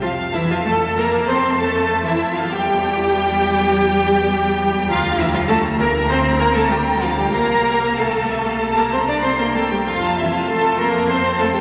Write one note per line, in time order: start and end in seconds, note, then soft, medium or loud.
0.01 2.46 F2 medium
0.01 0.10 F3 medium
0.01 0.10 F4 medium
0.01 0.31 F5 medium
0.01 2.45 A5 medium
0.33 0.49 E3 medium
0.33 0.40 E4 medium
0.33 0.49 E5 medium
0.50 0.65 F3 medium
0.50 0.56 F4 medium
0.50 0.66 F5 medium
0.65 0.74 A3 medium
0.65 0.96 A4 medium
0.65 0.95 A5 medium
0.97 1.27 A#3 medium
0.97 1.27 A#4 medium
0.97 1.06 A#5 medium
1.27 1.58 C4 medium
1.27 1.35 C5 medium
1.27 1.58 C6 medium
1.58 2.03 A3 medium
1.58 2.03 A4 medium
1.58 2.03 A5 medium
2.04 2.12 E3 medium
2.04 2.34 E4 medium
2.04 2.34 E5 medium
2.34 2.49 F3 medium
2.34 2.49 F4 medium
2.34 2.49 F5 medium
2.48 4.84 E2 medium
2.48 4.85 G3 medium
2.48 4.84 G4 loud
2.48 4.84 G5 medium
2.48 4.89 G5 loud
4.88 7.30 D2 medium
4.88 4.97 F3 medium
4.88 5.18 F4 loud
4.88 5.18 F5 loud
4.88 7.30 A#5 medium
5.18 5.25 E3 medium
5.18 5.24 E4 loud
5.18 5.25 E5 medium
5.33 5.40 F3 medium
5.33 5.39 F4 loud
5.33 5.40 F5 medium
5.47 5.57 A3 loud
5.47 5.55 A4 loud
5.47 5.56 A5 loud
5.78 5.87 A#3 medium
5.78 6.09 A#4 medium
5.78 6.09 A#5 medium
6.09 6.40 C4 medium
6.09 6.17 C5 loud
6.09 6.17 C6 loud
6.39 6.56 A#3 medium
6.39 6.55 A#4 loud
6.39 6.55 A#5 medium
6.54 6.71 A3 medium
6.54 6.61 A4 medium
6.54 6.70 A5 medium
6.70 7.03 G3 medium
6.70 6.78 G4 medium
6.70 7.01 G5 medium
7.00 7.09 F3 medium
7.00 7.07 F4 medium
7.00 7.17 F5 medium
7.18 7.34 G3 medium
7.18 7.34 G4 medium
7.18 7.34 G5 medium
7.33 9.63 C2 medium
7.33 7.98 A#3 medium
7.33 7.96 A#4 loud
7.33 7.87 F5 medium
7.33 7.96 A#5 loud
7.97 8.77 A3 medium
7.97 8.77 A4 medium
7.97 8.06 F5 medium
7.97 8.76 A5 medium
8.30 8.36 E5 medium
8.46 8.61 F5 medium
8.60 8.92 A5 medium
8.77 8.83 A#3 medium
8.77 8.93 A#4 medium
8.77 8.93 A#5 medium
8.92 8.99 C4 medium
8.92 8.98 C5 medium
8.92 9.24 A#5 medium
8.92 8.99 C6 medium
9.09 9.24 D4 medium
9.09 9.15 D5 medium
9.09 9.24 D6 medium
9.23 9.30 C4 medium
9.23 9.39 C5 medium
9.23 9.39 C6 medium
9.23 9.56 C6 medium
9.39 9.55 A#3 medium
9.39 9.46 A#4 medium
9.39 9.55 A#5 medium
9.55 9.71 A3 medium
9.55 9.71 A4 medium
9.55 9.87 G5 medium
9.55 9.71 A5 medium
9.71 9.87 G3 medium
9.71 9.77 G4 medium
9.71 9.77 G5 medium
9.86 11.61 F2 medium
9.86 10.18 F3 medium
9.86 10.17 F4 medium
9.86 10.17 F5 medium
9.86 10.02 C6 medium
10.02 10.18 A5 medium
10.17 10.25 E3 medium
10.17 10.33 E4 medium
10.17 10.34 E5 medium
10.17 10.34 C6 soft
10.32 10.50 F3 medium
10.32 10.49 F4 medium
10.32 10.49 F5 medium
10.32 10.49 A5 medium
10.48 10.80 A3 medium
10.48 10.80 A4 medium
10.48 10.79 A5 medium
10.48 10.64 C6 medium
10.65 10.80 A5 medium
10.78 11.10 A#4 medium
10.78 10.86 A#5 medium
10.78 10.95 C6 medium
10.82 11.12 A#3 medium
10.95 11.11 A5 soft
11.09 11.42 C4 medium
11.09 11.41 C5 medium
11.09 11.40 C6 medium
11.09 11.24 C6 medium
11.25 11.41 A5 medium
11.39 11.48 A3 medium
11.39 11.55 A4 medium
11.39 11.55 A5 medium
11.39 11.56 C6 soft
11.54 11.61 G3 medium
11.54 11.61 G4 medium
11.54 11.61 G5 medium
11.54 11.61 A5 medium